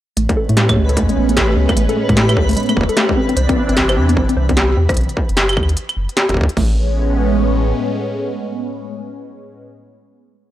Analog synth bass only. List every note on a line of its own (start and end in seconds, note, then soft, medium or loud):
0.17 0.27 A1 loud
0.49 0.78 A2 medium
0.77 0.98 C#2 medium
0.97 1.07 E2 medium
1.17 1.55 A1 medium
1.57 1.67 C#2 loud
1.77 1.87 A1 loud
2.09 2.38 A2 medium
2.37 2.54 C#2 medium
2.77 2.87 E1 loud
3.37 3.47 C2 loud
3.69 3.98 G1 medium
3.97 4.18 E2 medium
4.17 4.27 G1 medium
4.37 4.75 C2 medium
4.77 4.87 E2 medium
4.97 5.07 B1 loud
5.29 5.58 F#1 medium
5.57 5.74 D#2 medium
5.97 6.07 F#1 loud
6.29 6.38 F#1 loud
6.37 6.47 D#2 loud
6.57 7.73 A1 loud